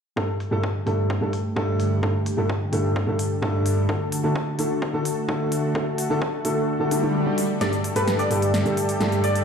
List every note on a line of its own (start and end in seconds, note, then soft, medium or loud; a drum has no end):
0.16 0.25 G2 medium
0.16 7.57 D3 medium
0.16 0.25 A3 medium
0.16 3.85 A3 medium
0.16 0.25 D4 medium
0.16 3.85 G4 medium
0.16 0.25 G4 medium
0.16 7.57 A4 medium
0.16 0.25 A4 medium
0.16 kick loud
0.40 open hi-hat medium
0.51 0.60 G2 medium
0.51 0.60 A3 medium
0.51 0.60 D4 medium
0.51 0.60 G4 medium
0.51 0.60 A4 medium
0.63 kick loud
0.86 1.19 G2 medium
0.86 1.19 A3 medium
0.86 1.19 D4 medium
0.86 1.19 G4 medium
0.86 1.19 A4 medium
0.86 open hi-hat medium
1.10 kick loud
1.21 1.29 G2 medium
1.21 1.30 A3 medium
1.21 1.30 D4 medium
1.21 1.30 G4 medium
1.21 1.30 A4 medium
1.33 open hi-hat medium
1.56 2.00 G2 medium
1.56 2.00 A3 medium
1.56 2.00 D4 medium
1.56 2.00 G4 medium
1.56 2.01 A4 loud
1.56 kick loud
1.80 open hi-hat medium
2.02 2.11 G2 medium
2.02 2.11 A3 medium
2.02 2.11 D4 medium
2.02 2.11 G4 medium
2.02 2.11 A4 medium
2.02 kick loud
2.26 open hi-hat loud
2.37 2.46 G2 medium
2.37 2.46 A3 medium
2.37 2.46 D4 medium
2.37 2.46 G4 medium
2.37 2.46 A4 medium
2.50 kick loud
2.72 3.05 G2 medium
2.72 3.05 A3 medium
2.72 3.05 D4 medium
2.72 3.05 G4 medium
2.72 3.05 A4 medium
2.72 open hi-hat medium
2.96 kick loud
3.07 3.15 G2 medium
3.07 3.16 A3 medium
3.07 3.16 D4 medium
3.07 3.16 G4 medium
3.07 3.16 A4 medium
3.19 open hi-hat loud
3.42 3.86 G2 medium
3.42 3.86 A3 medium
3.42 3.86 D4 medium
3.42 3.86 G4 medium
3.42 3.87 A4 loud
3.42 kick loud
3.66 open hi-hat medium
3.89 3.97 D3 medium
3.89 3.97 A3 medium
3.89 7.57 A3 medium
3.89 3.97 D4 medium
3.89 7.57 F#4 medium
3.89 3.97 F#4 medium
3.89 3.97 A4 medium
3.89 kick loud
4.12 open hi-hat loud
4.23 4.32 D3 medium
4.23 4.32 A3 medium
4.23 4.32 D4 medium
4.23 4.32 F#4 medium
4.23 4.32 A4 medium
4.36 kick loud
4.58 4.91 D3 medium
4.58 4.91 A3 medium
4.58 4.91 D4 medium
4.58 4.91 F#4 medium
4.58 4.91 A4 medium
4.58 open hi-hat medium
4.82 kick loud
4.93 5.01 D3 medium
4.93 5.02 A3 medium
4.93 5.02 D4 medium
4.93 5.02 F#4 medium
4.93 5.02 A4 medium
5.05 open hi-hat loud
5.28 5.72 D3 medium
5.28 5.72 A3 medium
5.28 5.72 D4 medium
5.28 5.72 F#4 medium
5.28 5.73 A4 loud
5.28 kick loud
5.52 open hi-hat medium
5.74 5.83 D3 medium
5.74 5.83 A3 medium
5.74 5.83 D4 medium
5.74 5.83 F#4 medium
5.74 5.83 A4 medium
5.74 kick loud
5.98 open hi-hat loud
6.09 6.18 D3 medium
6.09 6.18 A3 medium
6.09 6.18 D4 medium
6.09 6.18 F#4 medium
6.09 6.18 A4 loud
6.22 kick loud
6.44 6.77 D3 medium
6.44 6.77 A3 medium
6.44 6.77 D4 medium
6.44 6.77 F#4 medium
6.44 6.77 A4 medium
6.44 open hi-hat medium
6.68 swell medium
6.79 6.88 D3 medium
6.79 6.88 A3 medium
6.79 6.88 D4 medium
6.79 6.88 F#4 medium
6.79 6.88 A4 medium
6.91 7.00 D3 medium
6.91 7.00 A3 medium
6.91 7.00 D4 medium
6.91 7.00 F#4 medium
6.91 7.01 A4 medium
6.91 open hi-hat loud
7.02 7.23 D3 medium
7.02 7.23 A3 medium
7.02 7.24 D4 medium
7.02 7.24 F#4 medium
7.02 7.24 A4 medium
7.26 7.39 D3 medium
7.26 7.39 A3 medium
7.26 7.39 D4 medium
7.26 7.39 F#4 medium
7.26 7.39 D5 medium
7.38 open hi-hat medium
7.60 7.69 G2 medium
7.60 9.44 D3 medium
7.60 7.69 A3 medium
7.60 9.44 A3 medium
7.60 7.69 D4 medium
7.60 9.44 G4 medium
7.60 7.74 G4 medium
7.60 7.69 G4 medium
7.60 9.44 A4 medium
7.60 7.74 A4 medium
7.60 7.69 A4 medium
7.60 7.74 D5 medium
7.60 7.74 D5 loud
7.60 snare soft
7.60 closed hi-hat medium
7.60 riser medium
7.73 closed hi-hat soft
7.84 open hi-hat loud
7.95 8.04 G2 medium
7.95 8.04 A3 medium
7.95 8.04 D4 medium
7.95 8.09 G4 medium
7.95 8.04 G4 medium
7.95 8.09 A4 medium
7.95 8.04 A4 loud
7.95 8.09 B4 loud
7.95 closed hi-hat medium
8.08 snare soft
8.08 closed hi-hat medium
8.19 9.21 G4 medium
8.19 9.21 A4 medium
8.19 9.21 D5 medium
8.19 closed hi-hat soft
8.30 8.63 G2 medium
8.30 8.63 A3 medium
8.30 8.63 D4 medium
8.30 8.63 G4 medium
8.30 8.63 A4 medium
8.30 open hi-hat medium
8.42 closed hi-hat medium
8.54 snare soft
8.54 closed hi-hat medium
8.65 8.74 G2 medium
8.65 8.74 A3 medium
8.65 8.74 D4 medium
8.65 8.74 G4 medium
8.65 8.74 A4 medium
8.65 closed hi-hat soft
8.77 open hi-hat loud
8.89 closed hi-hat medium
9.00 9.44 G2 medium
9.00 9.44 A3 medium
9.00 9.44 D4 medium
9.00 9.44 G4 medium
9.00 9.44 A4 loud
9.00 snare soft
9.00 closed hi-hat medium
9.12 closed hi-hat soft
9.24 9.44 G4 medium
9.24 9.44 A4 medium
9.24 9.44 D5 medium
9.24 open hi-hat medium
9.36 closed hi-hat soft